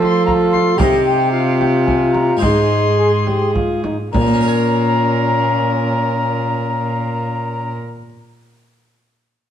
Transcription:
Already playing: harpsichord F3 A3 F4 C5, cello F3, trombone F4, viola A4
0.01 recorder C6, frame drum
0.25 trombone F4, recorder A#5, frame drum
0.51 recorder C6, frame drum
0.78 harpsichord C3 D#4 C5, cello C3, viola G4, trombone G4, recorder F5, frame drum
0.82 recorder D#5
1.05 recorder G5
1.31 trombone F4, recorder F5
1.58 recorder G5, frame drum
1.85 recorder G#5, frame drum
2.11 recorder A#5, frame drum
2.37 harpsichord G#2 G#3 D#4 C5, recorder C6
2.42 cello G#2, trombone D#4, viola G#4, frame drum
2.99 trombone G#4
3.26 trombone G4, frame drum
3.54 trombone F4, frame drum
3.84 trombone D#4, frame drum
4.12 cello A#2, harpsichord A#2, trombone C#4, recorder A#5, frame drum
4.16 viola A#4
4.20 harpsichord F3
4.27 harpsichord A#3
4.33 harpsichord C#4
4.41 harpsichord A#4
4.48 harpsichord C#5

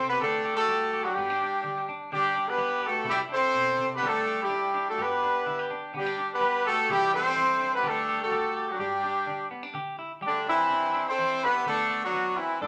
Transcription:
Already playing: clean electric guitar C3 D4 E4
0.09 horn section B3 G4 B4
0.20 clean electric guitar D3 G4, horn section A3 D4 A4
0.45 clean electric guitar G4
0.56 horn section A3 F#4 A4
0.68 clean electric guitar G3 G4
0.93 clean electric guitar G4
1.04 horn section F#3 D4 F#4
1.14 clean electric guitar G2, horn section G3 D4 G4
1.18 clean electric guitar B3
1.30 clean electric guitar D4
1.41 clean electric guitar D4
1.64 clean electric guitar D3, muted clean electric guitar stroke
1.78 clean electric guitar D4
1.89 clean electric guitar D4
2.12 clean electric guitar D3 D4, horn section G3 D4 G4
2.35 clean electric guitar D4
2.48 horn section B3 G4 B4
2.58 clean electric guitar G3 G4
2.82 horn section F#4, clean electric guitar G4
2.86 horn section A3 A4
3.04 clean electric guitar C3 E4, horn section E4
3.09 horn section G3 G4
3.29 clean electric guitar D4, horn section A4
3.33 horn section C4 C5
3.54 clean electric guitar B2
3.78 clean electric guitar C3
3.93 horn section B3 G4 B4
4.01 clean electric guitar D3 G3 D4 G4, horn section D4
4.06 horn section A3 A4
4.27 clean electric guitar G4
4.41 horn section G3 E4 G4
4.49 clean electric guitar G3 D4
4.74 clean electric guitar D4
4.88 horn section A3 F#4 A4
4.98 clean electric guitar G2 G4, horn section G4
5.02 horn section B3 B4
5.23 clean electric guitar D4
5.46 clean electric guitar D3 E4
5.59 clean electric guitar G4
5.71 clean electric guitar D4
5.94 clean electric guitar D3 B3, horn section G3 D4 G4
6.06 clean electric guitar D4
6.18 clean electric guitar D4
6.33 horn section B3 G4 B4
6.41 clean electric guitar G3 G4
6.65 horn section A3 F#4 A4, clean electric guitar G4
6.89 clean electric guitar C3 E3 G3 D4 E4, horn section G3 E4 G4
7.13 horn section C4 A4 C5, clean electric guitar D4
7.35 clean electric guitar E3 E4
7.60 clean electric guitar D4
7.74 horn section B3 G4 B4
7.83 clean electric guitar D3 G4, horn section D4
7.87 horn section A3 A4
8.09 clean electric guitar G4
8.23 horn section A3 F#4 A4
8.31 clean electric guitar G3 G4
8.57 clean electric guitar G4
8.69 horn section F#3 D4 F#4
8.79 clean electric guitar G2 D4, horn section G3 D4 G4
9.04 clean electric guitar D4
9.27 clean electric guitar D3 D4
9.51 clean electric guitar B3
9.63 clean electric guitar D4
9.74 clean electric guitar D3 G4
9.99 clean electric guitar E4
10.21 clean electric guitar G3 G4, horn section A3
10.26 horn section D3 D4
10.47 horn section E3 C4 E4, clean electric guitar D4
10.70 clean electric guitar D4, muted clean electric guitar stroke
10.94 clean electric guitar D4
11.08 horn section C4 A4 C5
11.19 clean electric guitar E3 E4
11.43 horn section B3 G4 B4, clean electric guitar D4
11.66 clean electric guitar D3 B3, horn section A3 D4 A4
11.90 clean electric guitar B3
12.04 horn section F#3 D4 F#4
12.13 clean electric guitar B3, muted clean electric guitar stroke
12.36 horn section E3 C4 E4
12.61 clean electric guitar G2 A4, horn section D3 B3 D4

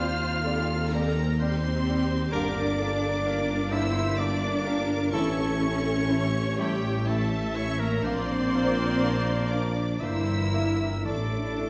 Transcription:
Already playing: tuba D#2, double bass section D#2, bassoon G3, clarinet C4, cello section F4, viola section C5, oboe F5, flute section F5, violin section F6
0.01 violin section D#4 G4
0.26 violin section C4 D#4
0.43 bassoon G3, clarinet C4, viola section A4
0.51 violin section D#4 G4
0.74 violin section C4 D#4
0.90 cello section A#3, oboe A#4, flute section A#4, violin section A#5
0.94 bassoon G3, clarinet C4, violin section D#4 G4
1.19 violin section C4 D#4
1.38 bassoon G3, cello section C4, viola section G4, oboe C5, flute section C5, violin section C6
1.42 clarinet C4, violin section D#4 G4
1.66 violin section C4 D#4
1.88 bassoon G3, clarinet C4, violin section D#4 G4
2.12 violin section C4 D#4
2.30 double bass section G1, tuba G1, french horn section D3 G4, cello section D4, clarinet D4, violin section D4 G4 D6, trumpet A#4, viola section A#4, flute section D5, oboe D5
2.35 bassoon A#3
2.58 violin section A#3 A#4
2.77 clarinet D4, viola section A4
2.81 bassoon A#3, violin section D4 G4
3.04 violin section A#3 A#4
3.22 bassoon A#3, viola section A#4
3.27 violin section D4 G4, clarinet D4
3.51 violin section A#3 A#4
3.71 bassoon A#3, violin section D4 G4 E6, clarinet D4, cello section E4, viola section C5, flute section E5, oboe E5
3.94 violin section A#3 A#4
4.16 bassoon A#3, violin section D4 G4 D6, cello section D4, clarinet D4, viola section D5, oboe D5, flute section D5
4.42 violin section A#3 A#4
4.63 clarinet D4, violin section D4 G4, viola section A#4
4.67 bassoon A#3
4.90 violin section A#3 A#4
5.11 double bass section A1, tuba A1, french horn section E3 E4, bassoon A3, cello section C#4, violin section C#4 E4 C#6, clarinet E4, trumpet A4, viola section A4, flute section C#5, oboe C#5
5.39 violin section A3 C#4
5.60 bassoon A3, violin section C#4, clarinet E4
5.65 violin section E4
5.88 violin section A3 C#4
6.09 bassoon A3, violin section C#4 E4, clarinet E4, viola section C#5
6.36 violin section A3 C#4
6.58 cello section G3, bassoon A3, violin section C#4 E4 G5, clarinet E4, flute section G4, oboe G4
6.83 violin section A3 C#4
7.06 cello section A3, bassoon A3, violin section C#4 E4 A5, clarinet E4, flute section A4, oboe A4, viola section E5
7.30 violin section A3 C#4
7.55 bassoon A3, cello section C#4, violin section C#4 E4 C#6, clarinet E4, flute section C#5, oboe C#5
7.79 violin section A3 C#4 A#5, cello section A#3, flute section A#4, oboe A#4
8.01 double bass section A#1, tuba A#1, french horn section F3 D4, cello section C4, clarinet D4, violin section F4 A#4 C6, trumpet A#4, flute section C5, oboe C5, viola section D5
8.06 bassoon A#3
8.28 violin section D4 D5
8.52 bassoon A#3, clarinet D4, violin section F4 A#4
8.76 violin section D4 D5
9.02 bassoon A#3, clarinet D4, violin section F4 A#4
9.26 violin section D4 D5
9.50 bassoon A#3, cello section D4, clarinet D4, violin section F4 A#4 D6, flute section D5, oboe D5
9.73 violin section D4 D5
9.98 tuba G1, double bass section G1, french horn section E3 D4, violin section D4 A#4 E6, clarinet D4, cello section E4, trumpet A#4, viola section C5, flute section E5, oboe E5
10.03 bassoon A#3
10.23 violin section E4 G4
10.50 bassoon A#3, violin section D4 A#4, clarinet D4, viola section A#4
10.76 violin section E4 G4
11.02 double bass section A1, tuba A1, french horn section E3 E4, bassoon A3, violin section C#4 A4, cello section D4, clarinet E4, trumpet A4, viola section A4, flute section D5, oboe D5
11.06 violin section D6
11.30 violin section E4 C#5
11.56 bassoon A3, violin section C#4 A4, clarinet E4

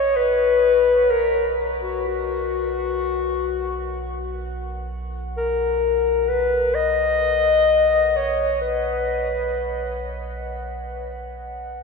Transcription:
Already playing: sub bass B1, clarinet C#5, glass harmonica F#5
0.16 clarinet B4
1.11 clarinet A#4
1.81 clarinet F#4
2.08 clarinet F#4
5.37 clarinet A#4
6.29 clarinet B4
6.75 clarinet D#5
8.16 clarinet C#5
8.62 clarinet B4

